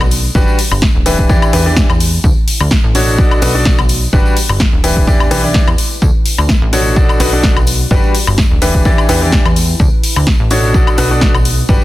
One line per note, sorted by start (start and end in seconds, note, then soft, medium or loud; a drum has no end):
0.00 0.30 B1 medium
0.00 0.64 B3 medium
0.00 0.35 F#4 medium
0.00 1.53 D5 medium
0.00 tambourine soft
0.00 high woodblock medium
0.11 open hi-hat loud
0.11 tambourine medium
0.24 tambourine soft
0.35 0.44 G1 medium
0.35 0.56 G3 medium
0.35 0.56 D4 medium
0.35 0.56 F#4 medium
0.35 0.56 G4 medium
0.35 1.53 G4 medium
0.35 0.56 B4 loud
0.35 kick loud
0.35 tambourine medium
0.48 1.53 A5 medium
0.48 tambourine soft
0.59 open hi-hat loud
0.59 tambourine medium
0.68 0.88 G1 loud
0.68 1.53 B5 medium
0.68 high woodblock medium
0.72 tambourine soft
0.82 kick loud
0.82 snare loud
0.82 tambourine soft
0.95 1.31 D1 medium
1.06 1.27 E3 medium
1.06 1.27 D4 medium
1.06 1.27 E4 medium
1.06 2.63 E4 medium
1.06 1.27 G4 medium
1.06 1.27 B4 loud
1.06 open hi-hat loud
1.06 tambourine medium
1.19 kick medium
1.19 tambourine soft
1.29 1.39 E2 medium
1.29 1.51 E3 medium
1.29 1.51 D4 medium
1.29 1.51 E4 medium
1.29 1.51 G4 medium
1.29 1.51 D5 medium
1.29 kick loud
1.29 tambourine medium
1.41 2.24 G5 medium
1.41 tambourine soft
1.41 high woodblock medium
1.48 2.63 B4 medium
1.53 1.84 E2 loud
1.53 1.63 E3 loud
1.53 1.63 D4 medium
1.53 1.63 E4 medium
1.53 1.63 G4 medium
1.53 1.63 B4 loud
1.53 open hi-hat loud
1.53 tambourine medium
1.66 1.87 E3 medium
1.66 1.87 D4 medium
1.66 1.87 E4 medium
1.66 1.87 G4 medium
1.66 1.87 D5 loud
1.66 tambourine soft
1.76 kick loud
1.76 snare loud
1.76 tambourine medium
1.90 2.19 E2 medium
1.90 tambourine soft
1.90 high woodblock medium
2.00 open hi-hat loud
2.00 tambourine loud
2.13 tambourine soft
2.24 2.33 D2 medium
2.24 3.57 D4 medium
2.24 kick loud
2.24 tambourine medium
2.48 open hi-hat loud
2.48 tambourine medium
2.61 2.77 D2 loud
2.61 tambourine soft
2.61 high woodblock medium
2.67 3.57 A4 medium
2.67 3.57 E5 medium
2.67 3.57 F#5 medium
2.67 snare loud
2.71 kick loud
2.71 tambourine medium
2.84 3.20 A1 medium
2.95 3.16 B2 medium
2.95 3.16 D4 medium
2.95 3.16 F#4 medium
2.95 3.16 A4 medium
2.95 3.16 C#5 medium
2.95 open hi-hat loud
2.95 tambourine medium
3.08 tambourine soft
3.18 3.28 B1 medium
3.18 3.40 B2 medium
3.18 4.42 B3 medium
3.18 3.40 D4 medium
3.18 3.40 F#4 medium
3.18 3.40 A4 medium
3.18 3.40 D5 medium
3.18 kick loud
3.18 tambourine medium
3.31 tambourine soft
3.31 high woodblock medium
3.42 3.73 B1 loud
3.42 3.52 B2 loud
3.42 3.52 D4 medium
3.42 3.52 F#4 medium
3.42 3.52 A4 medium
3.42 3.52 B4 loud
3.42 open hi-hat loud
3.42 tambourine loud
3.55 3.76 B2 medium
3.55 3.76 D4 medium
3.55 3.76 F#4 medium
3.55 3.76 A4 medium
3.55 3.76 D5 medium
3.55 tambourine soft
3.61 5.31 D5 medium
3.61 snare loud
3.66 kick loud
3.66 tambourine medium
3.78 4.08 B1 medium
3.78 tambourine soft
3.78 high woodblock medium
3.89 open hi-hat loud
3.89 tambourine medium
4.01 tambourine soft
4.13 4.22 G1 loud
4.13 4.34 G3 medium
4.13 4.34 D4 medium
4.13 4.34 F#4 medium
4.13 4.34 G4 medium
4.13 5.31 G4 medium
4.13 4.34 B4 medium
4.13 kick loud
4.13 tambourine medium
4.25 tambourine soft
4.37 open hi-hat loud
4.37 tambourine loud
4.46 4.66 G1 loud
4.46 5.31 A5 medium
4.46 5.31 B5 medium
4.46 high woodblock medium
4.50 tambourine soft
4.60 kick loud
4.60 snare loud
4.60 tambourine soft
4.73 5.09 D1 medium
4.84 5.05 E3 medium
4.84 5.05 D4 medium
4.84 5.05 E4 medium
4.84 6.41 E4 medium
4.84 5.05 G4 medium
4.84 5.05 B4 medium
4.84 open hi-hat loud
4.84 tambourine medium
4.97 kick medium
4.97 tambourine soft
5.07 5.33 E2 medium
5.07 5.28 E3 medium
5.07 5.28 D4 medium
5.07 5.28 E4 medium
5.07 5.28 G4 medium
5.07 5.28 D5 medium
5.07 kick loud
5.07 tambourine medium
5.20 6.41 B4 medium
5.20 6.02 G5 medium
5.20 tambourine soft
5.20 high woodblock medium
5.31 5.62 B1 medium
5.31 5.41 E3 loud
5.31 5.41 D4 medium
5.31 5.41 E4 medium
5.31 5.41 G4 medium
5.31 5.41 B4 loud
5.31 open hi-hat loud
5.31 tambourine medium
5.44 5.65 E3 medium
5.44 5.65 D4 medium
5.44 5.65 E4 medium
5.44 5.65 G4 medium
5.44 5.65 D5 medium
5.44 tambourine soft
5.54 kick loud
5.54 snare loud
5.54 tambourine medium
5.67 5.75 E2 medium
5.67 tambourine soft
5.67 high woodblock medium
5.78 open hi-hat loud
5.78 tambourine medium
5.91 tambourine soft
6.02 6.11 D2 loud
6.02 7.35 D4 medium
6.02 kick loud
6.02 tambourine medium
6.23 7.35 A4 medium
6.23 open hi-hat loud
6.23 tambourine medium
6.29 7.35 E5 medium
6.38 6.55 D2 loud
6.38 tambourine soft
6.38 high woodblock medium
6.45 7.35 F#5 medium
6.45 snare loud
6.45 tambourine soft
6.49 kick loud
6.62 6.98 A1 medium
6.73 6.94 B2 medium
6.73 6.94 D4 medium
6.73 6.94 F#4 medium
6.73 6.94 A4 medium
6.73 6.94 C#5 medium
6.73 open hi-hat loud
6.73 tambourine loud
6.86 tambourine soft
6.96 7.06 B1 medium
6.96 7.17 B2 medium
6.96 8.20 B3 medium
6.96 7.17 D4 medium
6.96 7.17 F#4 medium
6.96 7.17 A4 medium
6.96 7.17 D5 medium
6.96 kick loud
6.96 tambourine medium
7.05 7.91 F#4 medium
7.09 tambourine soft
7.09 high woodblock medium
7.20 7.51 B1 loud
7.20 7.30 B2 loud
7.20 7.30 D4 medium
7.20 7.30 F#4 medium
7.20 7.30 A4 medium
7.20 7.30 B4 loud
7.20 9.09 D5 medium
7.20 open hi-hat loud
7.20 tambourine loud
7.32 7.54 B2 medium
7.32 7.54 D4 medium
7.32 7.54 F#4 medium
7.32 7.54 A4 medium
7.32 7.54 D5 medium
7.32 tambourine soft
7.43 kick loud
7.43 snare loud
7.43 tambourine medium
7.56 7.86 B1 medium
7.56 tambourine soft
7.56 high woodblock medium
7.67 open hi-hat loud
7.67 tambourine loud
7.81 tambourine soft
7.91 8.00 G1 loud
7.91 8.12 G3 medium
7.91 8.12 D4 medium
7.91 8.12 F#4 medium
7.91 9.09 G4 medium
7.91 8.12 G4 medium
7.91 8.12 B4 loud
7.91 kick loud
7.91 tambourine soft
8.04 tambourine soft
8.15 open hi-hat loud
8.15 tambourine medium
8.23 8.44 G1 loud
8.23 9.09 A5 medium
8.23 9.09 B5 medium
8.23 tambourine soft
8.27 high woodblock medium
8.38 kick loud
8.38 snare loud
8.38 tambourine medium
8.51 8.87 D1 medium
8.62 8.83 E3 medium
8.62 8.83 D4 medium
8.62 10.18 E4 medium
8.62 8.83 E4 medium
8.62 8.83 G4 medium
8.62 8.83 B4 loud
8.62 open hi-hat loud
8.62 tambourine medium
8.75 kick medium
8.75 tambourine soft
8.85 8.95 E2 medium
8.85 9.06 E3 medium
8.85 9.06 D4 medium
8.85 9.06 E4 medium
8.85 9.06 G4 medium
8.85 9.06 D5 medium
8.85 kick loud
8.85 tambourine medium
8.98 tambourine soft
8.98 high woodblock medium
9.09 9.40 E2 loud
9.09 9.19 E3 medium
9.09 9.19 D4 medium
9.09 9.19 E4 medium
9.09 9.19 G4 medium
9.09 9.19 B4 loud
9.09 open hi-hat loud
9.09 tambourine medium
9.15 10.19 B4 medium
9.22 9.43 E3 medium
9.22 9.43 D4 medium
9.22 9.43 E4 medium
9.22 9.43 G4 medium
9.22 9.43 D5 medium
9.22 tambourine soft
9.32 kick loud
9.32 snare loud
9.32 tambourine soft
9.45 9.75 E2 medium
9.45 tambourine soft
9.45 high woodblock medium
9.56 open hi-hat loud
9.56 tambourine medium
9.69 tambourine soft
9.79 9.89 D2 loud
9.79 11.13 D4 medium
9.79 kick loud
9.79 tambourine soft
10.04 open hi-hat loud
10.04 tambourine medium
10.16 10.33 D2 medium
10.16 tambourine soft
10.16 high woodblock medium
10.21 11.13 A4 medium
10.21 11.13 E5 medium
10.21 11.13 F#5 medium
10.27 kick loud
10.27 snare loud
10.27 tambourine soft
10.40 10.76 A1 medium
10.50 10.72 B2 medium
10.50 10.72 D4 medium
10.50 10.72 F#4 medium
10.50 10.72 A4 medium
10.50 10.72 C#5 loud
10.50 open hi-hat loud
10.50 tambourine medium
10.63 tambourine soft
10.74 10.84 B1 medium
10.74 10.95 B2 medium
10.74 11.84 B3 medium
10.74 10.95 D4 medium
10.74 10.95 F#4 medium
10.74 10.95 A4 medium
10.74 10.95 D5 medium
10.74 kick loud
10.74 tambourine medium
10.85 11.69 F#4 medium
10.85 tambourine soft
10.85 high woodblock medium
10.98 11.29 B1 loud
10.98 11.08 B2 loud
10.98 11.08 D4 medium
10.98 11.08 F#4 medium
10.98 11.08 A4 medium
10.98 11.08 B4 loud
10.98 open hi-hat loud
10.98 tambourine medium
11.02 11.84 D5 medium
11.11 11.32 B2 medium
11.11 11.32 D4 medium
11.11 11.32 F#4 medium
11.11 11.32 A4 medium
11.11 11.32 D5 loud
11.11 tambourine soft
11.21 kick loud
11.21 snare loud
11.21 tambourine soft
11.35 11.64 B1 medium
11.35 tambourine soft
11.35 high woodblock medium
11.45 open hi-hat loud
11.45 tambourine medium
11.57 tambourine soft
11.68 11.78 G1 medium
11.68 11.84 G3 medium
11.68 11.84 D4 medium
11.68 11.84 F#4 medium
11.68 11.84 G4 medium
11.68 11.84 B4 medium
11.68 kick loud
11.68 tambourine soft